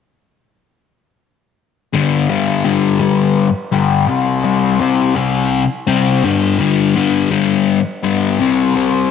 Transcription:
1.93 2.29 G2 medium
1.93 2.28 D3 medium
1.93 2.28 G3 medium
2.29 2.63 G2 medium
2.29 2.64 D3 medium
2.29 2.64 G3 medium
2.64 3.00 G2 medium
2.64 2.99 D3 medium
2.64 2.98 G3 medium
2.99 3.47 G2 medium
2.99 3.47 D3 medium
2.99 3.47 G3 loud
3.72 4.09 G2 medium
3.72 4.07 D3 medium
3.72 4.07 G3 loud
4.07 4.44 C3 medium
4.07 4.43 G3 loud
4.07 4.43 C4 medium
4.44 4.78 C3 medium
4.44 4.79 G3 medium
4.44 4.80 C4 medium
4.80 5.16 C3 medium
4.80 5.15 G3 medium
4.80 5.14 C4 medium
5.15 5.63 C3 medium
5.15 5.63 G3 medium
5.15 5.62 C4 loud
5.87 6.23 C3 medium
5.87 6.23 G3 medium
5.87 6.23 C4 medium
6.23 6.59 G2 medium
6.23 6.59 D3 medium
6.23 6.58 G3 medium
6.59 6.94 G2 medium
6.59 6.94 D3 medium
6.59 6.95 G3 medium
6.95 7.31 G2 medium
6.95 7.30 D3 medium
6.95 7.30 G3 medium
7.31 7.79 G2 medium
7.31 7.78 D3 medium
7.31 7.78 G3 loud
8.03 8.40 G2 medium
8.03 8.39 D3 medium
8.03 8.39 G3 medium
8.39 8.75 C3 medium
8.39 8.75 G3 medium
8.39 8.74 C4 medium
8.76 9.10 C3 medium
8.76 9.11 G3 medium
8.76 9.11 C4 medium

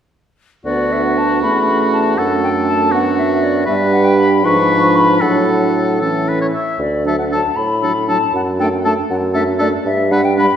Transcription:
0.65 1.45 D2 soft
0.65 1.45 B3 soft
0.65 1.45 D4 soft
0.65 2.20 F#4 soft
0.65 0.94 D5 soft
0.92 1.05 E5 soft
1.06 1.19 F#5 soft
1.17 1.42 A5 soft
1.42 2.20 E2 soft
1.42 2.18 A3 soft
1.42 2.18 C#4 soft
1.42 1.92 B5 soft
1.93 2.16 A5 soft
2.17 3.66 F#2 soft
2.17 2.94 A3 soft
2.17 2.92 D4 soft
2.17 2.93 A4 soft
2.17 2.42 F#5 soft
2.43 2.49 G5 medium
2.67 2.92 A5 soft
2.91 3.67 B3 soft
2.91 3.66 D4 soft
2.91 3.65 F#4 soft
2.91 3.17 F#5 medium
3.18 3.45 E5 soft
3.43 3.67 D5 soft
3.66 4.46 G2 soft
3.66 4.45 G3 soft
3.66 4.40 D4 soft
3.66 4.39 B4 soft
3.66 3.74 E5 medium
3.92 4.06 F#5 medium
4.04 4.17 G5 medium
4.18 4.46 B5 medium
4.44 5.21 G#2 medium
4.44 5.22 F3 soft
4.44 5.21 D4 soft
4.44 5.23 B4 soft
4.44 4.97 C#6 medium
4.96 5.23 B5 medium
5.21 6.51 A2 soft
5.21 6.00 F#3 soft
5.21 6.00 D4 soft
5.21 6.00 A4 soft
5.21 6.01 F#5 medium
6.01 6.53 E3 soft
6.01 6.53 C#4 soft
6.01 6.30 A4 soft
6.29 6.41 B4 soft
6.41 6.47 C#5 soft
6.54 6.79 E5 soft
6.79 7.44 D2 soft
6.79 7.04 D5 soft
7.05 7.15 F#3 soft
7.05 7.14 D4 soft
7.05 7.17 A4 soft
7.05 7.18 E5 soft
7.18 7.24 F#5 soft
7.31 7.41 F#3 soft
7.31 7.40 D4 soft
7.31 7.41 A4 soft
7.31 7.58 A5 soft
7.56 8.21 A2 soft
7.56 8.08 B5 medium
7.82 7.92 F#3 soft
7.82 7.92 D4 soft
7.82 7.92 A4 soft
8.07 8.18 F#3 soft
8.07 8.17 D4 soft
8.07 8.18 A4 soft
8.07 8.34 A5 medium
8.33 8.97 F#2 soft
8.33 8.41 F#5 soft
8.59 8.69 A3 soft
8.59 8.68 D4 soft
8.59 8.69 A4 soft
8.59 8.66 G5 medium
8.85 8.94 A3 soft
8.85 8.94 D4 soft
8.85 8.94 A4 soft
8.85 8.91 A5 medium
9.10 9.72 F#2 soft
9.10 9.16 F#5 medium
9.34 9.44 A3 soft
9.34 9.44 D4 soft
9.34 9.43 A4 soft
9.34 9.40 E5 medium
9.59 9.70 A3 soft
9.59 9.69 D4 soft
9.59 9.68 A4 soft
9.59 9.66 D5 medium
9.85 10.50 G2 medium
9.85 10.13 E5 medium
10.11 10.20 G3 soft
10.11 10.20 D4 soft
10.11 10.21 B4 soft
10.11 10.26 F#5 medium
10.25 10.37 G5 medium
10.37 10.47 G3 soft
10.37 10.46 D4 soft
10.37 10.47 B4 soft
10.37 10.56 B5 medium

